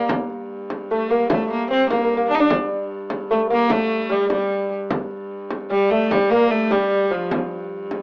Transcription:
0.09 4.90 G2 medium
0.09 frame drum medium
0.30 frame drum soft
0.70 frame drum medium
0.91 1.11 A3 medium
0.91 1.10 A3 medium
0.91 frame drum soft
1.10 1.30 A#3 medium
1.30 1.70 A3 medium
1.30 1.49 A3 medium
1.30 frame drum medium
1.51 1.69 A#3 medium
1.51 frame drum soft
1.70 1.89 C4 medium
1.70 1.90 C4 medium
1.90 2.27 A#3 medium
1.90 2.03 A#3 medium
1.90 frame drum medium
2.04 2.16 A#3 medium
2.11 frame drum soft
2.17 2.31 A#3 medium
2.29 2.36 D4 medium
2.29 2.39 D4 medium
2.35 2.41 D#4 medium
2.40 2.50 D4 medium
2.40 2.49 D4 medium
2.50 frame drum medium
2.70 frame drum soft
3.10 frame drum medium
3.30 3.50 A3 medium
3.30 3.41 A3 medium
3.30 frame drum soft
3.50 3.70 A#3 medium
3.50 3.73 A#3 loud
3.70 4.12 A3 medium
3.70 4.13 A3 medium
3.70 frame drum medium
4.10 4.28 G3 medium
4.10 4.31 G3 medium
4.30 4.72 G3 soft
4.30 4.73 G3 medium
4.30 frame drum medium
4.50 frame drum soft
4.90 8.02 G2 medium
4.90 frame drum medium
5.11 frame drum soft
5.51 frame drum medium
5.70 5.91 G3 medium
5.70 5.92 G3 medium
5.90 6.13 A3 medium
5.90 6.11 A3 medium
6.10 6.31 G3 medium
6.10 6.32 G3 medium
6.10 frame drum medium
6.30 6.52 A#3 loud
6.30 6.50 A#3 medium
6.30 frame drum soft
6.50 6.73 A3 loud
6.50 6.71 A3 medium
6.70 7.10 G3 medium
6.70 7.14 G3 medium
6.70 frame drum medium
6.91 frame drum soft
7.11 7.29 F3 medium
7.11 7.32 F3 medium
7.31 frame drum medium
7.51 frame drum soft
7.91 frame drum medium

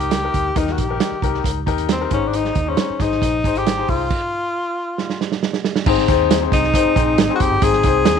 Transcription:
0.00 0.28 C#2 medium
0.00 0.15 D#4 medium
0.00 0.15 G4 medium
0.00 0.59 G4 loud
0.00 0.16 A#4 medium
0.00 closed hi-hat medium
0.11 snare loud
0.11 closed hi-hat medium
0.23 0.49 D#4 medium
0.23 0.49 G4 medium
0.23 0.49 A#4 medium
0.34 0.53 D2 medium
0.34 kick medium
0.34 closed hi-hat medium
0.55 0.75 D#2 medium
0.55 1.19 D#3 medium
0.55 0.81 D#4 medium
0.55 0.74 D#4 medium
0.55 0.82 G4 medium
0.55 0.82 A#4 medium
0.55 kick loud
0.55 closed hi-hat medium
0.67 snare soft
0.72 0.81 F#4 medium
0.78 0.98 A#1 medium
0.78 1.45 G4 medium
0.78 kick medium
0.78 closed hi-hat medium
0.89 1.15 D#4 medium
0.89 1.15 G4 medium
0.89 1.15 A#4 medium
1.00 snare loud
1.00 closed hi-hat medium
1.11 muted fingered electric bass stroke soft
1.22 1.42 C2 medium
1.22 1.56 D#4 medium
1.22 1.57 G4 medium
1.22 1.57 A#4 medium
1.22 kick medium
1.22 closed hi-hat medium
1.34 snare soft
1.44 1.64 C#2 medium
1.44 kick medium
1.44 closed hi-hat medium
1.66 2.05 D#2 medium
1.66 1.92 D#4 medium
1.66 1.92 G4 medium
1.66 1.93 A#4 medium
1.66 kick medium
1.66 closed hi-hat medium
1.78 closed hi-hat medium
1.89 2.11 C4 medium
1.89 snare loud
1.89 closed hi-hat medium
2.00 2.09 D#4 medium
2.00 2.11 G4 medium
2.00 2.12 A#4 medium
2.11 2.50 G#1 medium
2.11 2.74 G#2 medium
2.11 2.30 C#4 medium
2.11 2.55 D#4 medium
2.11 2.55 G#4 medium
2.11 2.56 C5 medium
2.11 kick medium
2.11 closed hi-hat medium
2.28 2.37 D4 medium
2.33 2.71 D#4 medium
2.33 closed hi-hat medium
2.45 snare soft
2.55 2.75 D#2 medium
2.55 kick medium
2.55 closed hi-hat medium
2.66 3.04 C#4 medium
2.66 2.92 D#4 medium
2.66 2.92 G#4 medium
2.66 2.93 C5 medium
2.77 snare loud
2.77 closed hi-hat medium
2.90 muted fingered electric bass stroke soft
2.99 3.19 G#1 medium
2.99 3.34 D#4 medium
2.99 3.59 D#4 medium
2.99 3.34 G#4 medium
2.99 3.35 C5 medium
2.99 kick medium
2.99 snare soft
2.99 closed hi-hat medium
3.12 snare soft
3.22 3.41 A#1 loud
3.22 kick medium
3.22 closed hi-hat medium
3.44 3.82 G#1 medium
3.44 3.70 D#4 medium
3.44 3.70 G#4 medium
3.44 3.70 C5 medium
3.44 kick medium
3.44 closed hi-hat medium
3.55 3.92 G4 loud
3.55 closed hi-hat medium
3.66 snare loud
3.66 closed hi-hat medium
3.77 4.03 D#4 medium
3.77 4.03 G#4 medium
3.77 4.03 C5 medium
3.88 4.08 C2 medium
3.88 5.43 F4 medium
3.88 kick medium
3.88 open hi-hat soft
4.10 kick loud
4.10 crash medium
4.98 snare medium
5.10 snare soft
5.21 snare medium
5.32 snare medium
5.43 snare medium
5.53 snare medium
5.64 snare medium
5.76 snare medium
5.86 6.05 G#1 loud
5.86 6.49 G#2 medium
5.86 6.03 C4 medium
5.86 6.03 D#4 medium
5.86 6.04 G#4 medium
5.86 6.04 C5 loud
5.86 kick loud
5.86 crash loud
5.97 snare soft
6.08 6.46 D#2 medium
6.08 6.34 C4 medium
6.08 6.34 D#4 medium
6.08 6.34 G#4 medium
6.08 6.34 C5 loud
6.08 kick medium
6.08 closed hi-hat medium
6.31 snare loud
6.31 closed hi-hat medium
6.41 6.66 C4 medium
6.41 6.67 D#4 medium
6.41 6.67 G#4 medium
6.41 6.67 C5 medium
6.52 6.71 C2 medium
6.52 7.31 D#4 loud
6.52 kick medium
6.52 snare soft
6.52 closed hi-hat medium
6.64 snare soft
6.73 6.91 C4 medium
6.73 6.91 D#4 medium
6.73 6.92 G#4 medium
6.73 6.92 C5 medium
6.73 kick medium
6.73 closed hi-hat medium
6.86 muted fingered electric bass stroke soft
6.95 7.15 A#1 medium
6.95 7.21 C4 medium
6.95 7.21 D#4 medium
6.95 7.21 G#4 medium
6.95 7.21 C5 medium
6.95 kick medium
6.95 closed hi-hat medium
7.18 7.27 G#1 loud
7.18 snare loud
7.18 closed hi-hat loud
7.29 7.54 C4 medium
7.29 7.55 D#4 medium
7.29 7.55 G#4 medium
7.29 7.55 C5 medium
7.36 7.43 F#4 medium
7.40 7.50 F#1 medium
7.40 7.65 G4 medium
7.40 kick medium
7.40 closed hi-hat medium
7.51 7.61 G1 medium
7.61 7.81 G#1 loud
7.61 8.20 G#2 medium
7.61 7.79 C4 medium
7.61 7.79 D#4 medium
7.61 7.79 G#4 medium
7.61 8.20 G#4 loud
7.61 7.79 C5 medium
7.61 kick loud
7.61 closed hi-hat medium
7.72 snare soft
7.83 8.03 C2 medium
7.83 8.09 C4 medium
7.83 8.10 D#4 medium
7.83 8.10 G#4 medium
7.83 8.10 C5 medium
7.83 kick medium
7.83 closed hi-hat medium
8.05 8.20 D#2 medium
8.05 snare loud
8.05 closed hi-hat loud
8.16 8.20 C4 medium
8.16 8.20 D#4 medium

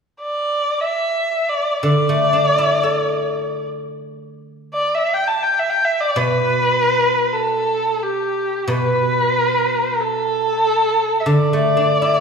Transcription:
0.21 0.82 D5 medium
0.81 1.51 E5 medium
1.49 1.83 D5 medium
1.83 4.74 D3 soft
1.83 3.66 D5 medium
2.09 4.02 A3 soft
2.33 4.26 D4 soft
2.58 4.51 E4 soft
2.83 4.75 A4 soft
4.74 4.96 D5 medium
4.95 5.15 E5 medium
5.14 5.29 G5 medium
5.28 5.44 A5 medium
5.43 5.60 G5 medium
5.59 5.71 E5 medium
5.70 5.86 G5 medium
5.85 6.02 E5 medium
6.01 6.19 D5 medium
6.16 8.66 B2 soft
6.16 7.35 B4 medium
7.33 8.05 A4 medium
8.03 8.70 G4 medium
8.68 11.28 B2 soft
8.68 10.02 B4 medium
10.01 11.22 A4 medium
11.20 11.31 E5 soft
11.26 12.20 D3 soft
11.26 12.20 D5 medium
11.53 12.20 A3 soft
11.77 12.20 D4 soft
12.02 12.20 E4 soft

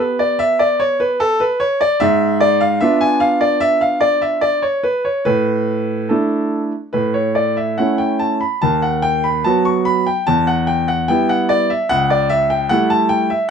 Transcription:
0.00 1.34 B3 medium
0.00 1.34 G4 medium
0.00 0.20 B4 medium
0.19 0.41 D5 medium
0.39 0.61 E5 loud
0.59 0.81 D5 medium
0.80 1.01 C#5 medium
1.00 1.21 B4 medium
1.20 1.41 A4 loud
1.40 1.61 B4 medium
1.60 1.81 C#5 loud
1.81 2.01 D5 medium
2.00 2.79 G#2 medium
2.00 2.41 E5 loud
2.40 2.61 D5 loud
2.61 2.81 F5 medium
2.80 4.58 B3 medium
2.80 4.58 D4 medium
2.80 4.58 F4 medium
2.80 3.01 E5 loud
3.01 3.21 G#5 loud
3.20 3.41 F5 loud
3.41 3.61 D5 medium
3.60 3.81 E5 loud
3.81 4.02 F5 medium
4.01 4.22 D5 medium
4.22 4.42 E5 medium
4.41 4.63 D5 medium
4.62 4.84 C#5 medium
4.83 5.05 B4 medium
5.05 5.26 C#5 medium
5.25 6.08 A2 medium
5.25 6.10 B4 medium
6.09 6.71 A3 soft
6.09 6.71 D4 medium
6.09 6.71 E4 medium
6.09 6.60 A4 medium
6.93 7.76 A2 medium
6.93 7.15 B4 medium
7.14 7.36 C#5 medium
7.35 7.57 D5 medium
7.57 7.78 E5 medium
7.78 8.40 A3 soft
7.78 8.40 C#4 soft
7.78 8.40 E4 medium
7.78 7.99 F#5 medium
7.98 8.20 G5 medium
8.19 8.42 A5 medium
8.41 8.63 B5 medium
8.62 9.43 D#2 medium
8.62 8.83 A5 loud
8.82 9.04 F#5 medium
9.02 9.24 G5 loud
9.24 9.45 B5 medium
9.44 10.05 F#3 medium
9.44 10.05 B3 medium
9.44 10.05 F#4 medium
9.44 9.66 A5 loud
9.65 9.87 C#6 medium
9.85 10.07 B5 medium
10.07 10.27 G5 medium
10.27 11.07 E2 medium
10.27 10.48 A5 loud
10.47 10.68 F#5 medium
10.67 10.88 G5 medium
10.88 11.09 F#5 medium
11.08 11.68 G3 medium
11.08 11.68 B3 medium
11.08 11.68 E4 medium
11.08 11.29 G5 medium
11.29 11.50 F#5 medium
11.49 11.70 D5 medium
11.70 11.90 E5 medium
11.89 12.68 C#2 medium
11.89 12.10 F#5 loud
12.10 12.31 D5 medium
12.29 12.50 E5 loud
12.50 12.70 G5 medium
12.69 13.28 G3 medium
12.69 13.29 A3 medium
12.69 13.29 E4 medium
12.69 12.90 F#5 loud
12.90 13.10 A5 loud
13.09 13.30 G5 loud
13.30 13.50 E5 medium

